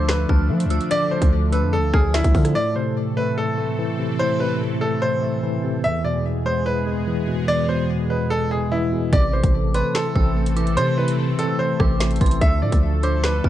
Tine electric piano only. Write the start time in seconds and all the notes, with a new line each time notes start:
Already playing: D3 F3 D4
0.29 D4
0.50 A3
0.71 F3
0.91 D3
1.12 F3
1.52 D4
1.94 D4
2.14 A3
2.35 F3
2.55 A2
2.76 C3
3.17 A3
3.58 A3
3.79 E3
3.99 C3
4.20 A2
4.40 C3
4.81 A3
5.22 A3
5.43 E3
5.63 C3
5.84 E2
6.04 B2
6.46 G#3
6.87 G#3
7.07 E3
7.28 B2
7.48 E2
7.69 B2
8.10 G#3
8.51 G#3
8.71 E3
8.92 B2
9.12 C3
9.33 E3
9.74 C4
10.15 C4
10.36 A3
10.56 E3
10.77 C3
10.98 E3
11.39 C4
11.80 C4
12.00 A3
12.21 E3
12.41 D3
12.62 F3
13.03 D4
13.44 D4